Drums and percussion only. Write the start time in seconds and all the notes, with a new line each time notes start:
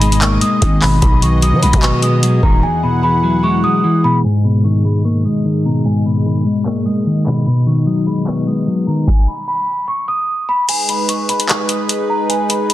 0.02 closed hi-hat
0.12 closed hi-hat
0.22 clap, closed hi-hat
0.41 closed hi-hat
0.62 kick, closed hi-hat
0.82 clap, open hi-hat
1.02 kick, closed hi-hat
1.22 closed hi-hat
1.42 closed hi-hat
1.63 closed hi-hat
1.73 kick, closed hi-hat
1.83 clap, closed hi-hat
2.02 closed hi-hat
2.23 closed hi-hat
2.43 kick
4.24 closed hi-hat
4.44 closed hi-hat
4.64 closed hi-hat
4.85 closed hi-hat
4.95 closed hi-hat
5.05 closed hi-hat
5.25 closed hi-hat
5.45 closed hi-hat
5.85 closed hi-hat
6.05 closed hi-hat
6.26 closed hi-hat
6.46 closed hi-hat
6.56 closed hi-hat
6.66 clap, closed hi-hat
6.86 closed hi-hat
7.06 closed hi-hat
7.26 clap
7.47 closed hi-hat
7.67 closed hi-hat
7.87 closed hi-hat
8.07 closed hi-hat
8.18 closed hi-hat
8.27 clap, closed hi-hat
8.47 closed hi-hat
8.67 closed hi-hat
9.08 kick, snare
10.69 closed hi-hat, crash
10.89 closed hi-hat
11.09 closed hi-hat
11.29 closed hi-hat
11.40 closed hi-hat
11.49 clap, closed hi-hat
11.69 closed hi-hat
11.89 closed hi-hat
12.30 closed hi-hat
12.50 closed hi-hat
12.70 closed hi-hat